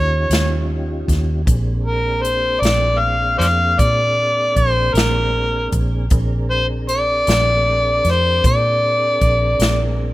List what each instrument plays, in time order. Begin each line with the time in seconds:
Already playing: fingered electric bass D#2, tonewheel organ C#4 D#4 F4 G4, harmonica C#5
0.30 fingered electric bass D#2, snare, closed hi-hat
1.08 fingered electric bass D#2, kick, snare, closed hi-hat
1.45 fingered electric bass A#1, tonewheel organ A#3 C4 D4 G#4, kick, closed hi-hat
1.84 harmonica A#4
2.22 harmonica C5, closed hi-hat
2.60 fingered electric bass A#1, harmonica D5, closed hi-hat
2.65 snare
2.99 harmonica F5
3.38 fingered electric bass F2, harmonica C5 D5 F5, closed hi-hat
3.44 snare
3.79 fingered electric bass A#2, harmonica D5, kick, closed hi-hat
4.56 fingered electric bass A#1, harmonica C5, kick, closed hi-hat
4.93 fingered electric bass A#1, harmonica A#4, closed hi-hat
4.98 snare
5.72 fingered electric bass A#1, kick, closed hi-hat
6.10 fingered electric bass A#1, tonewheel organ C4 D4 G#4 A#4, kick, closed hi-hat
6.50 harmonica C5
6.89 harmonica D5, closed hi-hat
7.27 fingered electric bass A#1, snare, closed hi-hat
8.05 fingered electric bass F2, snare, closed hi-hat
8.11 harmonica C5
8.44 fingered electric bass A#2, harmonica D5, kick, closed hi-hat
9.21 fingered electric bass A#1, kick, closed hi-hat
9.59 fingered electric bass A#1, snare, closed hi-hat